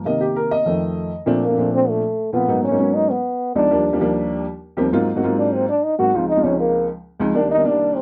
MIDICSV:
0, 0, Header, 1, 3, 480
1, 0, Start_track
1, 0, Key_signature, -2, "major"
1, 0, Tempo, 303951
1, 88, Time_signature, 4, 2, 24, 8
1, 12662, End_track
2, 0, Start_track
2, 0, Title_t, "Trombone"
2, 0, Program_c, 0, 57
2, 2275, Note_on_c, 0, 58, 79
2, 2710, Note_off_c, 0, 58, 0
2, 2744, Note_on_c, 0, 60, 105
2, 2991, Note_on_c, 0, 57, 82
2, 3014, Note_off_c, 0, 60, 0
2, 3678, Note_off_c, 0, 57, 0
2, 3688, Note_on_c, 0, 59, 93
2, 4167, Note_off_c, 0, 59, 0
2, 4177, Note_on_c, 0, 61, 93
2, 4661, Note_on_c, 0, 63, 98
2, 4685, Note_off_c, 0, 61, 0
2, 4905, Note_on_c, 0, 59, 79
2, 4929, Note_off_c, 0, 63, 0
2, 5609, Note_off_c, 0, 59, 0
2, 5618, Note_on_c, 0, 62, 100
2, 6287, Note_off_c, 0, 62, 0
2, 8500, Note_on_c, 0, 62, 91
2, 8750, Note_on_c, 0, 60, 84
2, 8774, Note_off_c, 0, 62, 0
2, 8976, Note_off_c, 0, 60, 0
2, 8985, Note_on_c, 0, 62, 96
2, 9230, Note_on_c, 0, 63, 85
2, 9254, Note_off_c, 0, 62, 0
2, 9449, Note_off_c, 0, 63, 0
2, 9458, Note_on_c, 0, 66, 111
2, 9724, Note_on_c, 0, 65, 92
2, 9747, Note_off_c, 0, 66, 0
2, 9928, Note_off_c, 0, 65, 0
2, 9938, Note_on_c, 0, 63, 100
2, 10182, Note_on_c, 0, 61, 95
2, 10205, Note_off_c, 0, 63, 0
2, 10406, Note_off_c, 0, 61, 0
2, 10416, Note_on_c, 0, 58, 91
2, 10861, Note_off_c, 0, 58, 0
2, 11622, Note_on_c, 0, 62, 89
2, 11840, Note_off_c, 0, 62, 0
2, 11861, Note_on_c, 0, 63, 108
2, 12096, Note_on_c, 0, 62, 95
2, 12120, Note_off_c, 0, 63, 0
2, 12571, Note_on_c, 0, 60, 83
2, 12595, Note_off_c, 0, 62, 0
2, 12662, Note_off_c, 0, 60, 0
2, 12662, End_track
3, 0, Start_track
3, 0, Title_t, "Upright piano"
3, 0, Program_c, 1, 0
3, 81, Note_on_c, 1, 48, 56
3, 94, Note_on_c, 1, 51, 51
3, 98, Note_on_c, 1, 75, 84
3, 105, Note_on_c, 1, 58, 63
3, 326, Note_off_c, 1, 75, 0
3, 326, Note_on_c, 1, 67, 74
3, 560, Note_off_c, 1, 67, 0
3, 572, Note_on_c, 1, 70, 82
3, 803, Note_off_c, 1, 70, 0
3, 811, Note_on_c, 1, 75, 100
3, 997, Note_off_c, 1, 48, 0
3, 1003, Note_off_c, 1, 51, 0
3, 1009, Note_off_c, 1, 58, 0
3, 1037, Note_on_c, 1, 41, 59
3, 1048, Note_on_c, 1, 51, 53
3, 1057, Note_on_c, 1, 57, 66
3, 1727, Note_off_c, 1, 41, 0
3, 1732, Note_off_c, 1, 51, 0
3, 1737, Note_off_c, 1, 57, 0
3, 1827, Note_off_c, 1, 75, 0
3, 1992, Note_on_c, 1, 46, 86
3, 1997, Note_on_c, 1, 53, 75
3, 2005, Note_on_c, 1, 57, 75
3, 2007, Note_on_c, 1, 60, 78
3, 2010, Note_on_c, 1, 62, 93
3, 2253, Note_off_c, 1, 46, 0
3, 2255, Note_off_c, 1, 53, 0
3, 2259, Note_off_c, 1, 57, 0
3, 2260, Note_off_c, 1, 60, 0
3, 2262, Note_off_c, 1, 62, 0
3, 2358, Note_on_c, 1, 46, 60
3, 2362, Note_on_c, 1, 53, 60
3, 2367, Note_on_c, 1, 57, 57
3, 2371, Note_on_c, 1, 60, 61
3, 2371, Note_on_c, 1, 62, 76
3, 2447, Note_off_c, 1, 46, 0
3, 2450, Note_off_c, 1, 53, 0
3, 2452, Note_off_c, 1, 57, 0
3, 2454, Note_off_c, 1, 60, 0
3, 2454, Note_off_c, 1, 62, 0
3, 2494, Note_on_c, 1, 46, 72
3, 2497, Note_on_c, 1, 53, 62
3, 2497, Note_on_c, 1, 57, 64
3, 2507, Note_on_c, 1, 60, 62
3, 2511, Note_on_c, 1, 62, 74
3, 3164, Note_off_c, 1, 46, 0
3, 3166, Note_off_c, 1, 53, 0
3, 3166, Note_off_c, 1, 57, 0
3, 3171, Note_off_c, 1, 60, 0
3, 3173, Note_off_c, 1, 62, 0
3, 3674, Note_on_c, 1, 46, 70
3, 3677, Note_on_c, 1, 53, 65
3, 3677, Note_on_c, 1, 57, 63
3, 3683, Note_on_c, 1, 60, 61
3, 3694, Note_on_c, 1, 65, 75
3, 3851, Note_off_c, 1, 46, 0
3, 3852, Note_off_c, 1, 53, 0
3, 3852, Note_off_c, 1, 57, 0
3, 3855, Note_off_c, 1, 60, 0
3, 3861, Note_off_c, 1, 65, 0
3, 3914, Note_on_c, 1, 44, 72
3, 3919, Note_on_c, 1, 58, 67
3, 3920, Note_on_c, 1, 54, 70
3, 3924, Note_on_c, 1, 59, 72
3, 3935, Note_on_c, 1, 63, 84
3, 4175, Note_off_c, 1, 44, 0
3, 4178, Note_off_c, 1, 54, 0
3, 4178, Note_off_c, 1, 58, 0
3, 4180, Note_off_c, 1, 59, 0
3, 4185, Note_off_c, 1, 63, 0
3, 4271, Note_on_c, 1, 54, 60
3, 4277, Note_on_c, 1, 44, 69
3, 4278, Note_on_c, 1, 58, 61
3, 4282, Note_on_c, 1, 63, 73
3, 4285, Note_on_c, 1, 59, 60
3, 4366, Note_off_c, 1, 54, 0
3, 4368, Note_off_c, 1, 44, 0
3, 4369, Note_off_c, 1, 58, 0
3, 4371, Note_off_c, 1, 63, 0
3, 4373, Note_off_c, 1, 59, 0
3, 4407, Note_on_c, 1, 44, 68
3, 4407, Note_on_c, 1, 54, 62
3, 4415, Note_on_c, 1, 58, 61
3, 4416, Note_on_c, 1, 59, 64
3, 4417, Note_on_c, 1, 61, 76
3, 4890, Note_off_c, 1, 44, 0
3, 4890, Note_off_c, 1, 54, 0
3, 4895, Note_off_c, 1, 58, 0
3, 4895, Note_off_c, 1, 59, 0
3, 4895, Note_off_c, 1, 61, 0
3, 5609, Note_on_c, 1, 37, 75
3, 5612, Note_on_c, 1, 56, 65
3, 5613, Note_on_c, 1, 53, 65
3, 5618, Note_on_c, 1, 59, 65
3, 5624, Note_on_c, 1, 63, 83
3, 5780, Note_off_c, 1, 37, 0
3, 5781, Note_off_c, 1, 56, 0
3, 5782, Note_off_c, 1, 53, 0
3, 5784, Note_off_c, 1, 59, 0
3, 5787, Note_off_c, 1, 63, 0
3, 5852, Note_on_c, 1, 39, 75
3, 5854, Note_on_c, 1, 53, 70
3, 5863, Note_on_c, 1, 55, 74
3, 5868, Note_on_c, 1, 58, 69
3, 5871, Note_on_c, 1, 62, 85
3, 6106, Note_off_c, 1, 39, 0
3, 6107, Note_off_c, 1, 53, 0
3, 6111, Note_off_c, 1, 55, 0
3, 6114, Note_off_c, 1, 58, 0
3, 6115, Note_off_c, 1, 62, 0
3, 6202, Note_on_c, 1, 39, 77
3, 6204, Note_on_c, 1, 53, 72
3, 6207, Note_on_c, 1, 55, 75
3, 6213, Note_on_c, 1, 58, 73
3, 6215, Note_on_c, 1, 62, 86
3, 6292, Note_off_c, 1, 39, 0
3, 6294, Note_off_c, 1, 53, 0
3, 6295, Note_off_c, 1, 55, 0
3, 6298, Note_off_c, 1, 58, 0
3, 6299, Note_off_c, 1, 62, 0
3, 6328, Note_on_c, 1, 39, 87
3, 6332, Note_on_c, 1, 53, 78
3, 6342, Note_on_c, 1, 55, 77
3, 6342, Note_on_c, 1, 58, 80
3, 6344, Note_on_c, 1, 62, 95
3, 7005, Note_off_c, 1, 39, 0
3, 7007, Note_off_c, 1, 53, 0
3, 7011, Note_off_c, 1, 58, 0
3, 7012, Note_off_c, 1, 55, 0
3, 7012, Note_off_c, 1, 62, 0
3, 7530, Note_on_c, 1, 39, 87
3, 7532, Note_on_c, 1, 53, 71
3, 7543, Note_on_c, 1, 55, 77
3, 7546, Note_on_c, 1, 60, 91
3, 7549, Note_on_c, 1, 58, 77
3, 7701, Note_off_c, 1, 39, 0
3, 7703, Note_off_c, 1, 53, 0
3, 7708, Note_off_c, 1, 55, 0
3, 7709, Note_off_c, 1, 60, 0
3, 7711, Note_off_c, 1, 58, 0
3, 7776, Note_on_c, 1, 54, 83
3, 7777, Note_on_c, 1, 44, 89
3, 7781, Note_on_c, 1, 58, 85
3, 7791, Note_on_c, 1, 60, 78
3, 7791, Note_on_c, 1, 65, 104
3, 7794, Note_on_c, 1, 63, 82
3, 8028, Note_off_c, 1, 54, 0
3, 8029, Note_off_c, 1, 44, 0
3, 8031, Note_off_c, 1, 58, 0
3, 8036, Note_off_c, 1, 60, 0
3, 8036, Note_off_c, 1, 65, 0
3, 8037, Note_off_c, 1, 63, 0
3, 8137, Note_on_c, 1, 44, 80
3, 8146, Note_on_c, 1, 54, 74
3, 8149, Note_on_c, 1, 58, 71
3, 8152, Note_on_c, 1, 60, 72
3, 8155, Note_on_c, 1, 63, 70
3, 8157, Note_on_c, 1, 66, 85
3, 8221, Note_off_c, 1, 44, 0
3, 8226, Note_off_c, 1, 54, 0
3, 8227, Note_off_c, 1, 58, 0
3, 8228, Note_off_c, 1, 60, 0
3, 8230, Note_off_c, 1, 63, 0
3, 8231, Note_off_c, 1, 66, 0
3, 8262, Note_on_c, 1, 54, 79
3, 8263, Note_on_c, 1, 44, 86
3, 8266, Note_on_c, 1, 58, 78
3, 8267, Note_on_c, 1, 60, 77
3, 8269, Note_on_c, 1, 63, 80
3, 8275, Note_on_c, 1, 65, 87
3, 8931, Note_off_c, 1, 54, 0
3, 8932, Note_off_c, 1, 44, 0
3, 8934, Note_off_c, 1, 58, 0
3, 8934, Note_off_c, 1, 60, 0
3, 8935, Note_off_c, 1, 63, 0
3, 8938, Note_off_c, 1, 65, 0
3, 9451, Note_on_c, 1, 44, 68
3, 9460, Note_on_c, 1, 54, 62
3, 9460, Note_on_c, 1, 58, 63
3, 9464, Note_on_c, 1, 63, 64
3, 9464, Note_on_c, 1, 66, 78
3, 9467, Note_on_c, 1, 60, 62
3, 9622, Note_off_c, 1, 44, 0
3, 9626, Note_off_c, 1, 54, 0
3, 9626, Note_off_c, 1, 58, 0
3, 9628, Note_off_c, 1, 63, 0
3, 9628, Note_off_c, 1, 66, 0
3, 9629, Note_off_c, 1, 60, 0
3, 9697, Note_on_c, 1, 37, 71
3, 9698, Note_on_c, 1, 56, 67
3, 9703, Note_on_c, 1, 53, 68
3, 9710, Note_on_c, 1, 60, 71
3, 9713, Note_on_c, 1, 63, 78
3, 9948, Note_off_c, 1, 37, 0
3, 9949, Note_off_c, 1, 56, 0
3, 9951, Note_off_c, 1, 53, 0
3, 9955, Note_off_c, 1, 60, 0
3, 9956, Note_off_c, 1, 63, 0
3, 10054, Note_on_c, 1, 37, 62
3, 10054, Note_on_c, 1, 53, 61
3, 10058, Note_on_c, 1, 56, 63
3, 10064, Note_on_c, 1, 60, 60
3, 10066, Note_on_c, 1, 65, 73
3, 10139, Note_off_c, 1, 37, 0
3, 10139, Note_off_c, 1, 53, 0
3, 10141, Note_off_c, 1, 56, 0
3, 10144, Note_off_c, 1, 60, 0
3, 10144, Note_off_c, 1, 65, 0
3, 10163, Note_on_c, 1, 53, 65
3, 10164, Note_on_c, 1, 37, 68
3, 10173, Note_on_c, 1, 56, 65
3, 10173, Note_on_c, 1, 60, 63
3, 10182, Note_on_c, 1, 63, 76
3, 10840, Note_off_c, 1, 37, 0
3, 10840, Note_off_c, 1, 53, 0
3, 10845, Note_off_c, 1, 56, 0
3, 10845, Note_off_c, 1, 60, 0
3, 10849, Note_off_c, 1, 63, 0
3, 11363, Note_on_c, 1, 37, 87
3, 11364, Note_on_c, 1, 53, 73
3, 11368, Note_on_c, 1, 56, 79
3, 11373, Note_on_c, 1, 60, 77
3, 11384, Note_on_c, 1, 63, 96
3, 11535, Note_off_c, 1, 37, 0
3, 11536, Note_off_c, 1, 53, 0
3, 11538, Note_off_c, 1, 56, 0
3, 11540, Note_off_c, 1, 60, 0
3, 11546, Note_off_c, 1, 63, 0
3, 11599, Note_on_c, 1, 51, 71
3, 11600, Note_on_c, 1, 36, 75
3, 11607, Note_on_c, 1, 55, 68
3, 11615, Note_on_c, 1, 58, 66
3, 11615, Note_on_c, 1, 62, 85
3, 11857, Note_off_c, 1, 36, 0
3, 11857, Note_off_c, 1, 51, 0
3, 11861, Note_off_c, 1, 55, 0
3, 11865, Note_off_c, 1, 58, 0
3, 11865, Note_off_c, 1, 62, 0
3, 11958, Note_on_c, 1, 36, 68
3, 11965, Note_on_c, 1, 51, 65
3, 11966, Note_on_c, 1, 55, 63
3, 11972, Note_on_c, 1, 62, 75
3, 11977, Note_on_c, 1, 58, 58
3, 12046, Note_off_c, 1, 36, 0
3, 12048, Note_off_c, 1, 51, 0
3, 12052, Note_off_c, 1, 55, 0
3, 12055, Note_off_c, 1, 62, 0
3, 12058, Note_off_c, 1, 58, 0
3, 12070, Note_on_c, 1, 36, 70
3, 12071, Note_on_c, 1, 51, 64
3, 12078, Note_on_c, 1, 55, 64
3, 12085, Note_on_c, 1, 58, 69
3, 12088, Note_on_c, 1, 62, 84
3, 12558, Note_off_c, 1, 36, 0
3, 12559, Note_off_c, 1, 51, 0
3, 12563, Note_off_c, 1, 55, 0
3, 12566, Note_off_c, 1, 58, 0
3, 12567, Note_off_c, 1, 62, 0
3, 12662, End_track
0, 0, End_of_file